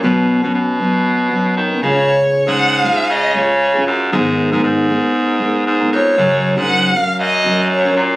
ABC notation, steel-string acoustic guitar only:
X:1
M:4/4
L:1/16
Q:"Swing 16ths" 1/4=117
K:F#
V:1 name="Steel-string acoustic guitar"
[B,,F,B,CB]3 [B,,F,B,CB]3 [F,B,CB]4 [F,B,CB]3 [B,CB] [C,G,CEG]2- | [C,G,CEG]3 [C,G,CG]3 [G,CEG]4 [G,CEG]3 [CEG]3 | [G,,D,G,B,DA]3 [G,,D,G,B,DA]3 [G,B,DA]4 [G,B,DA]3 [G,B,DA]3 | [F,,C,F,CFA]3 [F,,C,F,CFA]3 [F,CFA]4 [F,CFA]3 [F,CFA]3 |]